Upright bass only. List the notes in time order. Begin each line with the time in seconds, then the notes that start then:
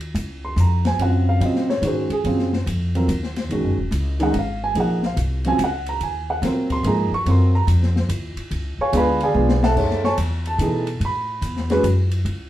Already playing: D#2
0.14 C#2
0.56 F2
0.98 F#2
1.40 A#2
1.82 G#2
2.10 muted upright bass stroke
2.24 F#2
2.66 F2
3.08 D#2
3.49 A#1
3.63 F#1
3.77 D#1
3.91 C#2
4.34 G#1
4.75 A#1
5.16 C2
5.58 C#2
6.01 D#2
6.42 A#2
6.83 G#2
7.11 muted upright bass stroke
7.26 F#2
7.67 F2
8.09 D#2
8.36 muted upright bass stroke
8.51 C#2
8.78 muted upright bass stroke
8.93 D2
9.34 B1
9.76 F#2
10.18 E2
10.58 B2
11.00 A2
11.41 E2
11.83 F#2
12.25 C#2